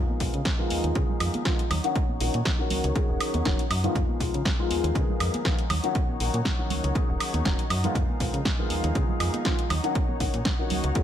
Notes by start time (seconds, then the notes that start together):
Already playing: D#3 F3 G#3 B3 D#4 F4 G#4 F5
0.10 tambourine, high conga
0.20 B1 D#3 F3 G#3 B3 F4, kick, open hi-hat
0.34 C#3, closed hi-hat
0.45 kick, snare, closed hi-hat
0.59 D#3 F3 G#3 B3 F4
0.70 D#2, open hi-hat, high conga
0.84 D#2, closed hi-hat, tambourine
0.95 C#3 D#3 F3 G#3 B3 G#4, kick, closed hi-hat
1.09 tambourine, low conga
1.20 F2, open hi-hat, high woodblock
1.34 closed hi-hat, tambourine, high conga
1.45 D#3 F3 G#3 B3 F4, kick, snare, closed hi-hat
1.59 closed hi-hat, tambourine
1.70 D#2 C#5 F#5, open hi-hat, low conga, high woodblock
1.84 D#3 F#3 A#3 C#4 F#4, closed hi-hat, tambourine
1.96 kick, closed hi-hat
2.09 A#1, tambourine, high conga
2.20 A#1 D#3 F#3 A#3 C#4 F#4, open hi-hat
2.34 A#2, closed hi-hat
2.45 kick, snare, closed hi-hat
2.59 D#3 F#3 A#3 C#4 F#4
2.70 C#2, open hi-hat, high conga, low conga
2.84 C#2, closed hi-hat
2.95 D#3 F#3 A#3 C#4 G#4, kick, closed hi-hat
3.09 D#1
3.20 open hi-hat, high woodblock
3.34 D#2, closed hi-hat, tambourine, high conga
3.45 D#1 D#3 F#3 A#3 C#4 F#4, kick, snare, closed hi-hat
3.59 closed hi-hat, tambourine
3.71 F#2, open hi-hat, high woodblock
3.84 D#3 F3 G#3 B3 F4, closed hi-hat, tambourine, low conga
3.94 F2 D#4 G#4 F5, kick, closed hi-hat, tambourine
4.08 tambourine, high conga
4.20 B1 D#3 F3 G#3 B3 F4, kick, open hi-hat
4.34 C#3, closed hi-hat, tambourine
4.45 kick, snare, closed hi-hat
4.59 D#3 F3 G#3 B3 F4
4.70 D#2, open hi-hat, high conga
4.84 D#2, closed hi-hat, tambourine
4.95 C#3 D#3 F3 G#3 B3 G#4, kick, closed hi-hat
5.09 tambourine, low conga
5.20 F2, open hi-hat, high woodblock
5.34 closed hi-hat, tambourine, high conga
5.45 D#3 F3 G#3 B3 F4, kick, snare, closed hi-hat
5.59 closed hi-hat
5.70 D#2 C#5 F#5, open hi-hat, low conga, high woodblock
5.83 D#3 F#3 A#3 C#4 F#4, closed hi-hat, tambourine
5.95 kick, closed hi-hat
6.09 A#1, tambourine, high conga
6.20 A#1 D#3 F#3 A#3 C#4 F#4, open hi-hat
6.34 A#2, closed hi-hat, tambourine
6.45 kick, snare, closed hi-hat
6.59 D#3 F#3 A#3 C#4 F#4
6.70 C#2, open hi-hat, high conga, low conga
6.84 C#2, closed hi-hat, tambourine
6.95 D#3 F#3 A#3 C#4 G#4, kick, closed hi-hat
7.09 D#1
7.20 open hi-hat, high woodblock
7.34 D#2, closed hi-hat, tambourine, high conga
7.45 D#1 D#3 F#3 A#3 C#4 F#4, kick, snare, closed hi-hat
7.59 closed hi-hat, tambourine
7.70 F#2, open hi-hat, high woodblock
7.84 D#3 F3 G#3 B3 F4, closed hi-hat, tambourine, low conga
7.95 F2 G#4 F5, kick, closed hi-hat
8.08 tambourine, high conga
8.20 B1 D#3 F3 G#3 B3 F4, kick, open hi-hat
8.34 C#3, closed hi-hat, tambourine
8.45 kick, snare, closed hi-hat
8.59 D#3 F3 G#3 B3 F4
8.70 D#2, open hi-hat, high conga
8.84 D#2, closed hi-hat, tambourine
8.95 C#3 D#3 F3 G#3 B3 G#4, kick, closed hi-hat
9.09 tambourine, low conga
9.20 F2, open hi-hat, high woodblock
9.34 closed hi-hat, tambourine, high conga
9.45 D#3 F3 G#3 B3 F4, kick, snare, closed hi-hat, tambourine
9.59 closed hi-hat
9.70 D#2 C#5 F#5, open hi-hat, low conga, high woodblock
9.83 D#3 F#3 A#3 C#4 F#4, closed hi-hat, tambourine
9.95 kick, closed hi-hat
10.09 A#1, tambourine, high conga
10.20 A#1 D#3 F#3 A#3 C#4 F#4, kick, open hi-hat
10.34 A#2, closed hi-hat, tambourine
10.45 kick, snare, closed hi-hat
10.59 D#3 F#3 A#3 C#4 F#4
10.70 C#2, open hi-hat, high conga, low conga
10.84 C#2, closed hi-hat, tambourine
10.95 D#3 F#3 A#3 C#4 G#4, kick, closed hi-hat